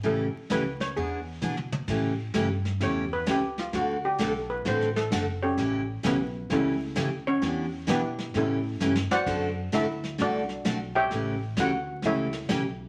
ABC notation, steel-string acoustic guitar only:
X:1
M:4/4
L:1/8
Q:"Swing" 1/4=130
K:Amix
V:1 name="Steel-string acoustic guitar"
[C,E,A,CG] z [C,E,A,CG] z [E,B,D^G] z [E,B,DG] z | [C,E,A,CG] z [C,E,A,CG] z [C,E,A,CG] z [C,E,A,CG] z | [D,A,=CFA] z [D,A,CFA] z [D,A,CFA] z [D,A,CFA] z | [C,E,A,CG] z [C,E,A,CG] z [C,E,A,CG] z [C,E,A,CG] z |
[E,B,DG] z [E,B,DG] z [C,E,A,CG] z [C,E,A,CG] z | [D,A,=CFA] z [D,A,CFA] z [D,A,CFA] z [D,A,CFA] z | [C,E,A,CG] z [C,E,A,CG] z [C,E,A,CG] z [C,E,A,CG] z |]